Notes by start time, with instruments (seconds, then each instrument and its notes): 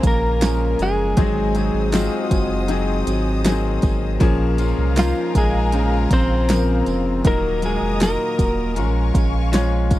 Already playing: grand piano C#3 F3 A#3 C#4 G#4 A#4, string section A#4 F5 G#5 A#5
0.02 sub bass A#1, steel-string acoustic guitar G#3 C#4 F4, kick, closed hi-hat, tambourine
0.07 clean electric guitar A#3 A#4
0.41 steel-string acoustic guitar F3 G#3 C#4 F4, grand piano F3 A#3 C#4 A#4, snare, closed hi-hat, tambourine
0.79 sub bass F#1, clean electric guitar G#3 G#4, closed hi-hat, tambourine
1.17 sub bass G#1, steel-string acoustic guitar G#2 D#3 F#3 G#3 C4 G#4, grand piano F#3 C4 D#4 G#4, string section C5 D#5 D#6, kick, closed hi-hat, tambourine
1.55 grand piano F#3 C4 D#4 G#4, closed hi-hat, tambourine
1.74 sub bass G#1
1.92 steel-string acoustic guitar F#3 G#3 C4 G#4, grand piano F#3 C4 D#4 F4, snare, closed hi-hat, tambourine
2.26 clean electric guitar F#4
2.30 sub bass F#1, steel-string acoustic guitar F#3 G#3 C4 G#4, kick, closed hi-hat, tambourine
2.68 grand piano F#3 C4 D#4 G#4, steel-string acoustic guitar F#3 G#3 C4 G#4, closed hi-hat, tambourine
3.06 sub bass G#1, steel-string acoustic guitar F#3 G#3 C4 G#4, closed hi-hat, tambourine
3.44 steel-string acoustic guitar F#3 G#3 C4 G#4, grand piano F#3 A#3 D#4 G#4, snare, closed hi-hat, tambourine
3.52 grand piano C4
3.82 sub bass G#1, kick, closed hi-hat, tambourine
4.20 sub bass A#1, steel-string acoustic guitar A#2 F3 G#3 C#4 F4, grand piano F3 A#3 C#4 G#4, string section A#4 F5 G#5 A#5, kick, closed hi-hat, tambourine
4.58 grand piano F3 A#3 C#4 F4, closed hi-hat, tambourine
4.78 sub bass C2
4.96 steel-string acoustic guitar F3 G#3 C#4 F4, grand piano F3 A#3 C#4 D#4, clean electric guitar F4, snare, closed hi-hat, tambourine
5.00 clean electric guitar F3
5.34 sub bass A#1, steel-string acoustic guitar G#3 C#4 F4, clean electric guitar G#3 G#4, kick, closed hi-hat, tambourine
5.72 grand piano C#3 F3 A#3 F4, steel-string acoustic guitar F3 G#3 C#4 F4, closed hi-hat, tambourine
6.10 sub bass A#1, steel-string acoustic guitar G#3 F4, clean electric guitar C4 C5, kick, closed hi-hat, tambourine
6.48 grand piano C#3 F3 A#3 A#4, steel-string acoustic guitar F3 G#3 F4, snare, closed hi-hat, tambourine
6.86 sub bass F1, closed hi-hat, tambourine
7.24 sub bass D#1, grand piano A#2 F#3 A#3 D#4 A#4, steel-string acoustic guitar D#3 A#3 D#4 F#4, clean electric guitar A#3 A#4, string section A#4 D#5 A#5 D#6, kick, closed hi-hat, tambourine
7.62 grand piano F#3 A#3 D#4 A#4, clean electric guitar G#3 G#4, closed hi-hat, tambourine
7.82 sub bass F1
8.00 steel-string acoustic guitar D#3 A#3 D#4 F#4, grand piano F#3 A#3 D#4 F4, clean electric guitar A#3 A#4, snare, closed hi-hat, tambourine
8.38 sub bass D#1, steel-string acoustic guitar A#3 D#4 F#4, kick, closed hi-hat, tambourine
8.76 sub bass A#1, steel-string acoustic guitar F3 G#3 C#4 F4, grand piano G#3 C#4 F4 A#4, string section F5 G#5 C#6, closed hi-hat, tambourine
9.14 sub bass A#1, steel-string acoustic guitar G#3 C#4 F4, kick, closed hi-hat, tambourine
9.52 steel-string acoustic guitar F3 G#3 C#4 F4, grand piano G#3 C#4 F4 C#5, snare, closed hi-hat, tambourine
9.91 sub bass G#1, kick, closed hi-hat, tambourine